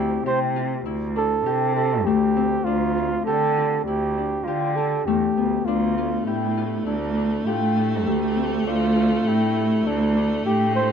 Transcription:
0.00 0.22 D2 medium
0.00 2.06 A3 medium
0.00 2.36 C4 medium
0.00 0.96 D4 medium
0.00 0.62 E4 medium
0.00 0.25 G4 medium
0.00 0.26 G4 medium
0.26 0.82 C3 medium
0.26 1.46 G4 medium
0.26 0.40 C5 medium
0.56 0.92 F4 medium
0.86 1.42 D2 medium
0.86 1.82 E4 medium
1.16 2.66 D4 medium
1.16 1.73 A4 medium
1.46 2.08 C3 medium
1.46 3.27 G4 medium
1.75 2.97 F4 medium
1.75 2.07 A4 medium
2.06 2.62 D2 medium
2.06 5.07 A3 medium
2.06 2.66 G4 medium
2.36 5.36 C4 medium
2.65 3.22 D2 medium
2.65 4.17 D4 medium
2.65 3.25 F4 medium
2.97 3.57 F4 medium
3.25 3.83 D3 medium
3.25 4.47 G4 medium
3.25 3.82 A4 medium
3.57 3.93 F4 medium
3.85 4.43 D2 medium
3.85 4.83 E4 medium
3.85 4.46 G4 medium
4.18 5.67 D4 medium
4.45 5.07 D3 medium
4.45 4.77 F4 medium
4.45 6.27 G4 medium
4.75 5.97 F4 medium
4.75 5.07 A4 medium
5.06 5.34 E2 medium
5.06 8.07 A3 medium
5.06 5.67 G4 medium
5.37 5.64 D2 medium
5.37 8.43 B3 medium
5.65 6.23 D2 medium
5.65 10.92 A3 medium
5.65 7.17 D4 medium
5.65 6.25 F4 medium
5.98 6.57 F4 medium
6.26 6.83 A2 medium
6.26 6.82 E4 medium
6.26 7.46 G4 medium
6.57 6.92 F4 medium
6.86 7.43 D2 medium
6.86 7.47 D4 medium
6.86 7.82 E4 medium
7.17 8.66 D4 soft
7.46 8.08 A2 medium
7.46 7.76 F4 medium
7.46 9.26 G4 medium
7.76 8.96 F4 medium
8.07 8.63 D2 medium
8.07 10.92 A3 medium
8.07 8.63 G4 medium
8.37 10.92 C4 medium
8.66 9.22 D2 medium
8.66 10.16 D4 medium
8.66 9.29 F4 medium
8.97 9.56 F4 medium
9.26 9.82 A2 medium
9.26 9.88 E4 medium
9.26 10.46 G4 medium
9.56 9.93 F4 medium
9.87 10.42 D2 medium
9.87 10.45 D4 medium
9.87 10.82 E4 medium
10.16 10.92 D4 medium
10.45 10.92 A2 medium
10.45 10.74 G4 medium
10.45 10.92 G4 medium
10.76 10.92 F4 medium
10.76 10.89 C5 medium

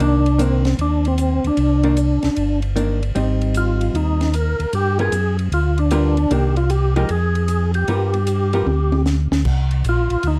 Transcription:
0.00 0.75 C2 medium
0.00 0.23 D#3 medium
0.00 0.24 A#3 medium
0.00 0.24 D4 medium
0.00 0.42 D4 medium
0.00 ride medium
0.26 ride soft
0.38 0.63 D#3 medium
0.38 0.63 A#3 medium
0.38 0.77 C4 medium
0.38 0.63 D4 medium
0.38 hi-hat pedal medium
0.38 ride medium
0.65 snare soft
0.65 ride soft
0.79 1.40 D#2 medium
0.79 1.07 D4 medium
0.79 ride medium
1.05 1.47 C4 medium
1.05 ride soft
1.18 hi-hat pedal medium
1.18 ride medium
1.44 1.51 D#2 soft
1.44 2.60 D4 medium
1.44 ride soft
1.57 2.19 C2 medium
1.57 ride medium
1.83 1.96 D#3 medium
1.83 1.96 A#3 medium
1.83 1.96 D4 medium
1.83 ride soft
1.97 hi-hat pedal medium
1.97 ride medium
2.23 2.30 C2 soft
2.23 snare soft
2.23 ride soft
2.36 3.12 G1 medium
2.36 ride medium
2.62 ride soft
2.76 2.99 D#3 medium
2.76 3.00 A#3 medium
2.76 3.00 D4 medium
2.76 hi-hat pedal medium
2.76 ride medium
3.03 ride soft
3.15 3.90 G#1 medium
3.15 4.25 G3 medium
3.15 4.26 C4 medium
3.15 4.26 D#4 medium
3.15 ride medium
3.41 ride soft
3.54 3.97 F4 medium
3.54 hi-hat pedal medium
3.54 ride medium
3.81 ride soft
3.93 4.55 D#2 medium
3.93 4.35 D#4 medium
3.93 ride medium
4.21 snare soft
4.21 ride soft
4.34 4.74 A#4 loud
4.34 hi-hat pedal medium
4.34 ride medium
4.59 4.66 D#2 soft
4.59 ride soft
4.73 5.10 G2 medium
4.73 4.98 G4 loud
4.73 ride medium
4.99 5.11 G3 medium
4.99 5.11 B3 medium
4.99 5.11 F4 medium
4.99 5.37 G#4 loud
4.99 5.12 A#4 medium
4.99 ride soft
5.12 5.49 F#2 medium
5.12 hi-hat pedal medium
5.12 ride medium
5.39 ride soft
5.52 6.27 D2 medium
5.52 5.79 F4 medium
5.52 ride medium
5.78 6.33 D4 medium
5.78 ride soft
5.91 6.15 G3 medium
5.91 6.15 B3 medium
5.91 6.15 F4 medium
5.91 6.15 A#4 medium
5.91 hi-hat pedal medium
5.91 ride medium
6.17 ride soft
6.30 7.05 C2 medium
6.30 6.54 D#3 medium
6.30 6.54 A#3 medium
6.30 6.55 D4 medium
6.30 6.55 G4 medium
6.30 ride medium
6.56 6.71 F4 medium
6.56 ride soft
6.70 6.94 G4 loud
6.70 hi-hat pedal medium
6.70 ride medium
6.96 7.08 F3 medium
6.96 7.08 G#3 medium
6.96 7.08 D#4 medium
6.96 7.08 G4 medium
6.96 7.10 A#4 medium
6.96 ride soft
7.09 7.84 F2 medium
7.09 7.71 G#4 medium
7.09 ride medium
7.35 ride soft
7.48 hi-hat pedal medium
7.48 ride medium
7.74 9.02 G4 medium
7.74 ride soft
7.88 8.63 G2 medium
7.88 8.12 G3 medium
7.88 8.12 B3 medium
7.88 8.12 F4 medium
7.88 8.12 A#4 medium
7.88 ride medium
8.14 ride soft
8.27 hi-hat pedal medium
8.27 ride medium
8.53 8.65 G3 medium
8.53 8.66 B3 medium
8.53 8.66 F4 medium
8.53 8.66 A#4 medium
8.53 ride soft
8.66 9.28 D2 medium
8.66 high tom soft
8.92 high tom medium
9.06 snare medium
9.06 hi-hat pedal medium
9.31 9.44 D2 medium
9.31 snare medium
9.45 9.84 C2 medium
9.45 kick medium
9.45 crash medium
9.71 ride soft
9.84 10.09 A#1 medium
9.84 hi-hat pedal medium
9.84 ride medium
9.89 10.27 F4 medium
10.10 10.17 A#1 soft
10.10 ride soft
10.23 10.39 D2 medium
10.23 ride medium
10.27 10.39 D#4 medium

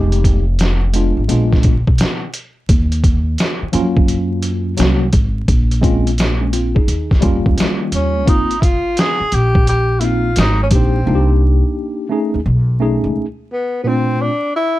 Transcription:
0.00 1.13 F1 loud
0.00 0.22 G#3 medium
0.00 0.42 G#3 medium
0.00 0.43 B3 medium
0.00 0.43 D#4 medium
0.00 0.44 G4 medium
0.12 closed hi-hat soft
0.24 kick medium
0.24 closed hi-hat medium
0.59 snare loud
0.59 closed hi-hat medium
0.93 1.22 G#3 medium
0.93 1.22 B3 medium
0.93 1.23 D4 medium
0.93 1.23 F4 medium
0.93 closed hi-hat medium
1.17 1.28 G#1 medium
1.28 1.83 A#1 loud
1.28 1.73 G#3 medium
1.28 1.73 B3 medium
1.28 1.74 D4 medium
1.28 1.74 F4 medium
1.28 closed hi-hat medium
1.53 kick medium
1.53 snare soft
1.63 kick medium
1.63 closed hi-hat medium
1.87 1.98 B1 medium
1.87 kick medium
1.98 snare loud
1.98 closed hi-hat medium
2.34 closed hi-hat medium
2.69 3.35 D#2 loud
2.69 kick loud
2.69 closed hi-hat medium
2.92 closed hi-hat soft
3.04 kick medium
3.04 closed hi-hat medium
3.38 snare loud
3.38 closed hi-hat medium
3.62 muted upright bass stroke soft
3.72 4.74 F#2 medium
3.72 3.82 F3 medium
3.72 4.73 A#3 medium
3.72 4.74 C#4 medium
3.72 4.74 F4 loud
3.72 closed hi-hat medium
3.78 4.76 F#3 medium
3.97 kick loud
4.08 closed hi-hat medium
4.42 closed hi-hat medium
4.77 5.10 C2 medium
4.77 5.05 F#3 medium
4.77 5.06 A#3 medium
4.77 5.06 C#4 medium
4.77 5.07 F#4 medium
4.77 snare loud
4.77 closed hi-hat medium
5.13 5.45 G#1 medium
5.13 kick medium
5.13 closed hi-hat medium
5.48 6.72 A#1 medium
5.48 kick loud
5.48 closed hi-hat medium
5.71 closed hi-hat soft
5.81 6.10 G#3 medium
5.81 6.10 C4 medium
5.81 6.11 C#4 medium
5.81 6.11 F4 medium
5.81 kick medium
5.81 closed hi-hat medium
6.07 closed hi-hat medium
6.18 snare loud
6.18 closed hi-hat medium
6.41 6.53 G#3 soft
6.41 6.52 C#4 medium
6.53 6.75 C4 medium
6.53 6.75 F4 medium
6.53 closed hi-hat medium
6.75 6.87 C#2 medium
6.75 7.09 D#4 medium
6.75 7.09 G#4 medium
6.75 kick loud
6.88 7.19 D#2 medium
6.88 closed hi-hat medium
7.11 kick medium
7.11 snare soft
7.21 7.44 F2 medium
7.21 8.22 G3 medium
7.21 8.22 A#3 medium
7.21 8.22 C#4 medium
7.21 8.23 F4 loud
7.21 kick loud
7.21 closed hi-hat medium
7.46 7.57 D#2 medium
7.46 kick medium
7.57 7.89 D#3 medium
7.57 snare loud
7.57 closed hi-hat medium
7.92 8.28 D#2 medium
7.92 8.31 C#4 medium
7.92 closed hi-hat medium
8.26 8.93 G#1 loud
8.26 8.54 A#3 medium
8.26 8.54 C4 medium
8.26 8.55 D#4 medium
8.26 8.62 D#4 loud
8.26 8.55 F4 medium
8.26 kick loud
8.26 closed hi-hat medium
8.51 closed hi-hat soft
8.60 8.66 E4 medium
8.60 9.02 F4 medium
8.60 kick medium
8.60 closed hi-hat medium
8.97 9.36 G#4 medium
8.97 snare medium
8.97 closed hi-hat medium
9.20 muted upright bass stroke soft
9.32 10.33 A#1 medium
9.32 9.68 G4 medium
9.32 closed hi-hat medium
9.55 kick loud
9.67 10.01 G4 loud
9.67 closed hi-hat medium
10.00 10.29 A#3 medium
10.00 10.29 C4 medium
10.00 10.30 D#4 medium
10.00 10.06 E4 medium
10.00 10.30 F4 medium
10.00 closed hi-hat medium
10.04 10.38 F4 medium
10.36 10.68 G#1 loud
10.36 10.60 D#4 medium
10.36 snare loud
10.36 closed hi-hat medium
10.63 10.68 C#4 medium
10.70 11.03 A#1 medium
10.70 10.98 A#3 medium
10.70 10.99 D4 medium
10.70 11.00 D#4 medium
10.70 11.00 G4 medium
10.70 kick medium
10.70 closed hi-hat medium
10.75 11.39 C4 medium
11.06 11.60 C2 loud
11.06 12.06 A#3 medium
11.06 12.06 D4 medium
11.06 12.07 D#4 medium
11.06 11.16 F4 medium
11.15 12.11 G4 medium
12.09 12.38 A3 medium
12.09 12.39 C#4 medium
12.09 12.39 D#4 medium
12.09 12.39 G#4 medium
12.34 12.45 D#2 medium
12.46 13.00 B1 loud
12.80 13.24 A3 medium
12.80 13.25 C#4 medium
12.80 13.25 D#4 medium
12.80 13.26 G#4 medium
13.04 13.14 C#2 medium
13.53 13.80 B3 medium
13.83 14.29 A#2 medium
13.83 14.29 A3 medium
13.83 13.89 B3 medium
13.83 14.30 C4 medium
13.83 14.30 D4 medium
13.83 14.30 F4 medium
13.88 14.23 C4 medium
14.21 14.56 D4 loud
14.56 14.79 E4 loud

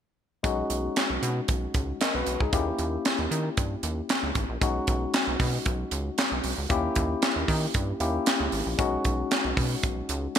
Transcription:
0.43 0.62 B1 loud
0.43 2.48 G#3 medium
0.43 2.49 C#4 medium
0.43 1.98 D#4 medium
0.43 1.98 F#4 medium
0.43 kick loud
0.43 closed hi-hat medium
0.70 0.88 B1 loud
0.70 closed hi-hat medium
0.96 snare medium
0.96 clap medium
0.96 closed hi-hat medium
1.10 1.19 B1 medium
1.22 1.41 B2 loud
1.22 closed hi-hat medium
1.48 1.67 B1 medium
1.48 kick loud
1.48 closed hi-hat medium
1.74 1.93 C#2 medium
1.74 kick loud
1.74 closed hi-hat medium
2.01 2.14 A#4 soft
2.01 2.14 D#5 medium
2.01 snare loud
2.01 clap loud
2.01 closed hi-hat medium
2.15 2.23 B1 medium
2.15 2.40 F#4 medium
2.15 2.40 B4 medium
2.26 2.37 B1 medium
2.26 closed hi-hat medium
2.40 2.49 C#2 medium
2.40 2.66 D#4 medium
2.40 2.66 G#4 medium
2.40 kick medium
2.52 2.71 D#2 loud
2.52 4.57 A#3 medium
2.52 4.57 C#4 medium
2.52 4.58 E4 medium
2.52 4.58 G4 medium
2.52 kick loud
2.52 closed hi-hat medium
2.79 2.97 D#2 loud
2.79 closed hi-hat medium
3.05 snare loud
3.05 clap medium
3.05 closed hi-hat medium
3.19 3.27 D#2 medium
3.31 3.49 D#3 loud
3.31 closed hi-hat medium
3.57 3.76 G2 medium
3.57 kick loud
3.57 closed hi-hat medium
3.83 4.02 D#2 medium
3.83 closed hi-hat medium
4.09 snare loud
4.09 clap medium
4.09 closed hi-hat medium
4.23 4.32 C#2 loud
4.35 4.45 G#1 loud
4.35 kick medium
4.35 closed hi-hat medium
4.49 4.58 A#1 medium
4.61 4.80 B1 loud
4.61 6.66 G#3 medium
4.61 6.66 C#4 medium
4.61 6.66 D#4 medium
4.61 6.67 F#4 medium
4.61 kick loud
4.61 closed hi-hat medium
4.87 5.06 B1 loud
4.87 kick medium
4.87 closed hi-hat medium
5.14 snare loud
5.14 clap medium
5.14 closed hi-hat medium
5.27 5.36 B1 loud
5.40 5.58 B2 loud
5.40 kick medium
5.40 open hi-hat medium
5.66 5.84 B1 loud
5.66 kick loud
5.66 closed hi-hat medium
5.91 6.10 C#2 loud
5.91 closed hi-hat medium
6.18 snare loud
6.18 clap medium
6.18 closed hi-hat loud
6.32 6.40 B1 medium
6.44 6.54 B1 medium
6.44 open hi-hat medium
6.58 6.67 C#2 medium
6.69 6.88 D#2 loud
6.69 7.97 A#3 medium
6.69 7.98 C#4 medium
6.69 7.98 E4 medium
6.69 7.98 G4 medium
6.69 kick loud
6.69 closed hi-hat medium
6.96 7.15 D#2 loud
6.96 kick medium
6.96 closed hi-hat medium
7.22 snare loud
7.22 clap medium
7.22 closed hi-hat medium
7.36 7.45 D#2 medium
7.48 7.67 D#3 loud
7.48 kick medium
7.48 open hi-hat medium
7.74 7.93 G2 loud
7.74 kick loud
7.74 closed hi-hat medium
8.00 8.19 D#2 loud
8.00 8.79 A#3 medium
8.00 8.77 C#4 medium
8.00 8.79 E4 medium
8.00 8.79 G4 medium
8.00 closed hi-hat medium
8.26 snare loud
8.26 clap medium
8.26 closed hi-hat loud
8.40 8.49 C#2 medium
8.52 8.62 G#1 medium
8.52 open hi-hat medium
8.66 8.75 A#1 medium
8.78 8.97 B1 loud
8.78 10.39 G#3 medium
8.78 10.39 C#4 medium
8.78 10.39 D#4 medium
8.78 10.39 F#4 medium
8.78 kick loud
8.78 closed hi-hat medium
9.05 9.23 B1 loud
9.05 kick medium
9.05 closed hi-hat medium
9.31 snare loud
9.31 clap medium
9.31 closed hi-hat medium
9.45 9.53 B1 medium
9.57 9.75 B2 loud
9.57 kick medium
9.57 open hi-hat medium
9.83 10.02 B1 medium
9.83 kick loud
9.83 closed hi-hat medium
10.09 10.28 C#2 loud
10.09 closed hi-hat medium
10.35 closed hi-hat loud

